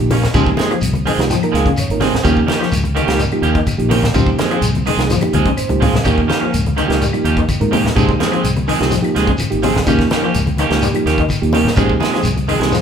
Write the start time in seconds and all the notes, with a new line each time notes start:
0.00 A#1 F3 A#3 D#4 G4
0.10 C3 A#3 C#4, open hi-hat, high conga, shekere
0.22 snare, low conga
0.34 C#2 C#3 F3 G#3 A#3 C4 D#4 G4 G#4, kick, closed hi-hat, high conga, low conga, claves, shekere
0.47 kick
0.57 G#3 C4 G#4, snare, closed hi-hat, high conga, shekere
0.71 F3, closed hi-hat, claves
0.81 C2, closed hi-hat, high conga, shekere
0.93 closed hi-hat, high conga
1.05 D#3 F3 G#3 C4 G#4 G#5, open hi-hat, high conga, claves, shekere
1.18 C2 F3 A#3 D#4 G4, snare, closed hi-hat
1.30 F3 G5, snare, closed hi-hat, shekere
1.43 F3 A#3 D#4 A#4, closed hi-hat, claves
1.52 C#2 F3 G#3 C4 G#4 F5, closed hi-hat, shekere
1.56 snare
1.66 C#3, kick, closed hi-hat
1.77 C#5, closed hi-hat, high conga, claves, shekere
1.90 G#1 F3 A#3 D#4 A#4, closed hi-hat
2.00 C3 F3 G#3 C4 G#4 C5, snare, open hi-hat, high conga, shekere
2.13 snare, low conga
2.23 D#2 C#3 D#3 F3 A#3 C#4 D#4 G4, kick, closed hi-hat, high conga, low conga, claves, shekere
2.37 kick
2.46 D#3 C#4 G4, muted clean electric guitar stroke, snare, closed hi-hat, high conga, shekere
2.58 F3 A#3 C#4 G4, snare, claves
2.72 C#2, closed hi-hat, high conga, shekere
2.84 closed hi-hat, high conga
2.95 D#3 A#3 C#4 G4, closed hi-hat, claves, shekere
3.06 C#2 F3 A#3 C#4 D#4 G4, snare, closed hi-hat
3.19 muted clean electric guitar stroke, closed hi-hat, high conga, shekere
3.31 F3 A#3 D#4 G4, closed hi-hat, claves
3.42 D#2 D#3 A#3 C#4 G4, closed hi-hat, shekere
3.55 D#3, kick, closed hi-hat
3.67 kick, closed hi-hat, high conga, claves, shekere
3.78 A#1 F3 A#3 D#4 G4, closed hi-hat
3.89 C3 D#3 A#3 C#4 G4, open hi-hat, high conga, shekere
4.03 snare, high conga, low conga
4.14 C#2 C#3 F3 A#3 C4 D#4 G4, muted clean electric guitar stroke, kick, closed hi-hat, high conga, low conga, claves, shekere
4.26 kick
4.38 F3 G#3 C4, muted clean electric guitar stroke, snare, closed hi-hat, high conga, shekere
4.50 F3 G#3 C4 G#4, closed hi-hat, claves
4.61 C2, closed hi-hat, high conga, shekere
4.75 closed hi-hat, high conga
4.85 D#3 G#3 C4 G#4, muted clean electric guitar stroke, open hi-hat, high conga, claves, shekere
4.97 C2 F3 A#3 D#4 G#4, snare, closed hi-hat
5.10 F3, snare, closed hi-hat, high conga, shekere
5.21 F3 A#3 D#4 G4, closed hi-hat, high conga, claves
5.33 C#2 F3 G#3 C4 G#4, closed hi-hat, high conga, shekere
5.45 C#3, kick, closed hi-hat
5.57 C5, closed hi-hat, claves, shekere
5.69 C#2 F3 A#3 D#4 G4, closed hi-hat, low conga
5.80 C3 F3 G#3 C4 G#4 F5, open hi-hat, low conga, shekere
5.93 snare, low conga
6.04 D#2 D#3 F3 A#3 C#4 D#4 G4, muted clean electric guitar stroke, kick, closed hi-hat, high conga, low conga, claves, shekere
6.18 kick
6.27 D#3 A#3 C#4 G4, snare, closed hi-hat, high conga, shekere
6.40 F3 A#3 C#4, muted clean electric guitar stroke, claves
6.54 C#2, closed hi-hat, high conga, shekere
6.66 closed hi-hat, high conga
6.77 D#3 A#3 C#4 G4, closed hi-hat, claves, shekere
6.88 C#2 F3 A#3 C#4 D#4 G4, snare, closed hi-hat
7.02 G3, closed hi-hat, high conga, shekere
7.13 F3 A#3 D#4 G4, closed hi-hat, claves
7.24 D#2 D#3 A#3 C#4 G4, closed hi-hat, shekere
7.37 D#3, kick, closed hi-hat
7.49 kick, closed hi-hat, high conga, claves, shekere
7.60 G#2 F3 A#3 D#4 A#4, closed hi-hat, low conga
7.71 C3 D#3 A#3 C#4 G4, open hi-hat, high conga, shekere
7.85 snare, low conga
7.95 C#2 C#3 F3 G#3 A#3 C4 D#4 G4 G#4, kick, closed hi-hat, high conga, low conga, claves, shekere
8.09 kick
8.20 F3 G#3 C4 G#4, snare, closed hi-hat, high conga, shekere
8.32 F3 G#3 C4 G#4, closed hi-hat, claves
8.44 C2, closed hi-hat, high conga, shekere
8.56 closed hi-hat, high conga
8.68 D#3 F3 G#3 C4 G#4, open hi-hat, claves, shekere
8.79 C2 F3 A#3 C4 D#4 G4 G#4, muted clean electric guitar stroke, snare, closed hi-hat
8.90 F3, snare, closed hi-hat, shekere
9.02 F3 A#3 D#4 G4, closed hi-hat, claves
9.15 C#2 F3 G#3 C4 G#4, snare, closed hi-hat, shekere
9.27 C#3, kick, closed hi-hat
9.38 closed hi-hat, high conga, claves, shekere
9.50 G#1 F3 A#3 D#4 G4, closed hi-hat
9.62 C3 F3 G#3 C4 G#4, open hi-hat, high conga, shekere
9.76 snare, high conga, low conga
9.86 D#2 C#3 F3 A#3 C#4 D#4 G4, muted clean electric guitar stroke, kick, closed hi-hat, high conga, low conga, claves, shekere
9.99 kick, snare
10.10 D#3 A#3 C#4 G4, snare, closed hi-hat, high conga, shekere
10.23 F3 A#3 C#4 G4, claves
10.34 C#2, closed hi-hat, high conga, shekere
10.46 closed hi-hat, high conga
10.57 D#3 A#3 C#4 G4, closed hi-hat, high conga, claves, shekere
10.70 C#2 F3 A#3 C#4 D#4 G4, snare, closed hi-hat
10.81 G3, closed hi-hat, shekere
10.94 F3 A#3 D#4 G4, closed hi-hat, claves
11.06 D#2 D#3 A#3 C#4 G4, snare, closed hi-hat, shekere
11.18 D#3, kick, closed hi-hat
11.29 kick, closed hi-hat, high conga, claves, shekere
11.42 D#2 F3 A#3 D#4 G4, closed hi-hat
11.53 C3 D#3 A#3 C#4 G4, open hi-hat, high conga, shekere
11.65 snare, high conga, low conga
11.76 C#2 C#3 F3 G#3 A#3 C4 D#4 G4 G#4, kick, closed hi-hat, high conga, low conga, claves, shekere
11.90 kick
12.00 G#3 C4 G#4, muted clean electric guitar stroke, snare, closed hi-hat, high conga, shekere
12.12 F3 G#3 C4 G#4, snare, closed hi-hat, claves
12.23 C2, closed hi-hat, high conga, shekere
12.36 closed hi-hat, high conga
12.48 D#3 F3 G#3 C4 G#4, open hi-hat, high conga, claves, shekere
12.59 C2 F3 G#3 A#3 C4 D#4 G4 G#4, snare, closed hi-hat
12.72 F3, snare, high conga, shekere